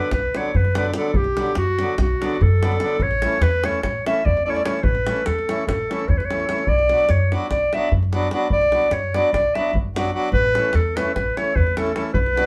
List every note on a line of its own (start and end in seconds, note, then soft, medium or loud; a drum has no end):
0.00 0.13 B4 medium
0.11 0.26 B1 medium
0.11 0.38 B4 medium
0.11 davul high medium
0.11 davul low medium
0.35 0.51 D3 medium
0.35 0.51 F#3 medium
0.35 0.51 B3 medium
0.35 0.52 D4 medium
0.35 0.58 C#5 medium
0.35 davul high medium
0.54 0.90 F#2 medium
0.54 0.77 B4 medium
0.54 davul low medium
0.65 davul high soft
0.75 0.91 D3 medium
0.75 0.91 F#3 medium
0.75 0.91 B3 medium
0.75 0.91 D4 medium
0.75 0.86 B4 medium
0.75 davul high medium
0.85 davul high soft
0.94 1.10 D3 medium
0.94 1.11 F#3 medium
0.94 1.11 B3 medium
0.94 1.11 D4 medium
0.94 1.08 A4 medium
0.94 davul high medium
1.08 1.18 A4 medium
1.14 1.40 B1 medium
1.14 1.57 G4 medium
1.14 davul low medium
1.24 davul high soft
1.36 1.52 D3 medium
1.36 1.52 F#3 soft
1.36 1.53 B3 medium
1.36 1.53 D4 medium
1.36 davul high medium
1.46 davul high soft
1.55 1.82 F#2 medium
1.55 1.97 F#4 medium
1.55 davul high medium
1.79 1.95 D3 medium
1.79 1.95 F#3 medium
1.79 1.95 B3 soft
1.79 1.95 D4 medium
1.79 davul high medium
1.98 2.12 B1 medium
1.98 2.44 F#4 medium
1.98 davul high medium
1.98 davul low medium
2.21 2.36 D3 medium
2.21 2.36 F#3 soft
2.21 2.37 B3 soft
2.21 2.37 D4 medium
2.21 davul high medium
2.41 2.76 F#2 medium
2.41 3.04 A4 medium
2.41 davul low medium
2.62 2.77 D3 medium
2.62 2.77 F#3 medium
2.62 2.77 B3 medium
2.62 2.78 D4 medium
2.62 davul high medium
2.72 davul high soft
2.80 2.96 D3 medium
2.80 2.96 F#3 medium
2.80 2.96 B3 medium
2.80 2.97 D4 medium
2.80 davul high medium
3.00 3.25 A1 medium
3.00 3.44 C#5 loud
3.00 davul low medium
3.11 davul high soft
3.22 3.38 E3 medium
3.22 3.38 A3 medium
3.22 3.38 C#4 medium
3.22 3.38 E4 medium
3.22 davul high medium
3.32 davul high soft
3.41 3.66 E2 medium
3.41 3.67 B4 loud
3.41 davul high medium
3.64 3.79 E3 medium
3.64 3.79 A3 medium
3.64 3.80 C#4 medium
3.64 3.80 E4 medium
3.64 3.83 C#5 loud
3.64 davul high medium
3.83 3.97 A1 medium
3.83 4.04 C#5 medium
3.83 davul high medium
3.83 davul low medium
4.06 4.21 E3 medium
4.06 4.21 A3 medium
4.06 4.22 C#4 soft
4.06 4.22 E4 medium
4.06 4.27 E5 medium
4.06 davul high medium
4.25 4.60 E2 medium
4.25 4.45 D5 medium
4.25 davul low medium
4.37 davul high soft
4.45 4.61 E3 medium
4.45 4.61 A3 medium
4.45 4.61 C#4 medium
4.45 4.62 E4 medium
4.45 4.52 D5 medium
4.50 4.57 C#5 medium
4.55 4.64 D5 medium
4.55 davul high soft
4.64 4.79 E3 medium
4.64 4.79 A3 medium
4.64 4.80 C#4 soft
4.64 4.80 E4 medium
4.64 4.85 C#5 medium
4.64 davul high medium
4.83 5.09 A1 medium
4.83 5.27 B4 loud
4.83 davul low medium
4.95 davul high soft
5.06 5.21 E3 soft
5.06 5.22 A3 medium
5.06 5.22 C#4 soft
5.06 5.22 E4 medium
5.06 davul high medium
5.17 davul high soft
5.26 5.51 E2 medium
5.26 5.67 A4 medium
5.26 davul high medium
5.39 davul high soft
5.49 5.63 E3 medium
5.49 5.63 A3 soft
5.49 5.64 C#4 soft
5.49 5.64 E4 medium
5.49 davul high medium
5.67 5.81 A1 medium
5.67 6.10 A4 medium
5.67 davul high medium
5.67 davul low medium
5.89 6.05 E3 medium
5.89 6.05 A3 soft
5.89 6.05 C#4 medium
5.89 6.06 E4 medium
5.89 davul high medium
6.00 davul high soft
6.08 6.43 E2 medium
6.08 6.19 C#5 medium
6.08 davul low medium
6.18 6.26 B4 medium
6.18 davul high soft
6.25 6.70 C#5 medium
6.30 6.45 E3 medium
6.30 6.45 A3 soft
6.30 6.45 C#4 medium
6.30 6.46 E4 medium
6.30 davul high medium
6.40 davul high soft
6.49 6.63 E3 medium
6.49 6.64 A3 medium
6.49 6.64 C#4 soft
6.49 6.64 E4 medium
6.49 davul high medium
6.58 davul high soft
6.67 6.92 B1 medium
6.67 7.12 D5 loud
6.67 davul low medium
6.79 davul high soft
6.89 7.06 F#3 medium
6.89 7.06 B3 soft
6.89 7.06 D4 soft
6.89 7.06 F#4 medium
6.89 davul high soft
6.99 davul high soft
7.09 7.34 F#2 medium
7.09 7.32 C#5 medium
7.09 davul high medium
7.32 7.47 F#3 medium
7.32 7.47 B3 medium
7.32 7.47 D4 soft
7.32 7.48 F#4 medium
7.32 davul high soft
7.50 7.64 B1 medium
7.50 7.75 D5 medium
7.50 davul high medium
7.50 davul low medium
7.73 7.88 F#3 medium
7.73 7.88 B3 medium
7.73 7.89 D4 medium
7.73 7.89 F#4 medium
7.73 7.92 E5 medium
7.73 davul high medium
7.92 8.27 F#2 medium
7.92 davul low medium
8.03 davul high soft
8.13 8.27 F#3 medium
8.13 8.28 B3 medium
8.13 8.28 D4 medium
8.13 8.29 F#4 medium
8.13 davul high soft
8.22 davul high soft
8.31 8.47 F#3 medium
8.31 8.47 B3 medium
8.31 8.47 D4 medium
8.31 8.48 F#4 medium
8.31 davul high medium
8.50 8.75 B1 medium
8.50 8.95 D5 loud
8.50 davul low medium
8.61 davul high soft
8.72 8.88 F#3 medium
8.72 8.88 B3 soft
8.72 8.88 D4 soft
8.72 8.88 F#4 medium
8.72 davul high soft
8.82 davul high soft
8.91 9.16 F#2 medium
8.91 9.16 C#5 medium
8.91 davul high medium
9.14 9.29 F#3 medium
9.14 9.29 B3 medium
9.14 9.30 D4 soft
9.14 9.30 F#4 medium
9.14 9.33 D5 medium
9.14 davul high medium
9.33 9.46 B1 medium
9.33 9.56 D5 medium
9.33 davul high medium
9.33 davul low medium
9.55 9.70 F#3 medium
9.55 9.71 B3 medium
9.55 9.71 D4 medium
9.55 9.71 F#4 medium
9.55 9.74 E5 medium
9.55 davul high soft
9.73 10.09 F#2 medium
9.73 davul low medium
9.96 10.10 F#3 medium
9.96 10.10 B3 medium
9.96 10.11 D4 medium
9.96 10.11 F#4 medium
9.96 davul high medium
10.05 davul high soft
10.14 10.29 F#3 medium
10.14 10.29 B3 medium
10.14 10.29 D4 medium
10.14 10.29 F#4 medium
10.32 10.57 A1 medium
10.32 10.77 B4 loud
10.32 davul low medium
10.45 davul high soft
10.55 10.70 E3 medium
10.55 10.71 A3 medium
10.55 10.71 C#4 medium
10.55 10.71 E4 medium
10.55 davul high medium
10.65 davul high soft
10.73 10.99 E2 medium
10.73 10.98 A4 medium
10.73 davul high medium
10.96 11.11 E3 medium
10.96 11.12 A3 medium
10.96 11.12 C#4 medium
10.96 11.12 E4 medium
10.96 11.14 B4 medium
10.96 davul high medium
11.15 11.30 A1 medium
11.15 11.38 B4 medium
11.15 davul high medium
11.15 davul low medium
11.37 11.52 E3 medium
11.37 11.53 A3 medium
11.37 11.53 C#4 soft
11.37 11.53 E4 medium
11.37 11.57 C#5 medium
11.37 davul high medium
11.56 11.92 E2 medium
11.56 11.76 B4 medium
11.56 davul low medium
11.67 davul high soft
11.77 11.92 E3 medium
11.77 11.92 A3 soft
11.77 11.92 C#4 medium
11.77 11.93 E4 medium
11.77 11.95 A4 medium
11.77 davul high medium
11.87 davul high soft
11.96 12.11 E3 medium
11.96 12.11 A3 soft
11.96 12.11 C#4 medium
11.96 12.12 E4 medium
11.96 12.05 A4 medium
11.96 davul high medium
12.14 12.40 B1 medium
12.14 12.46 B4 loud
12.14 davul low medium
12.26 davul high soft
12.36 12.46 F#3 medium
12.36 12.46 B3 soft
12.36 12.46 D4 soft
12.36 12.46 F#4 medium
12.36 davul high medium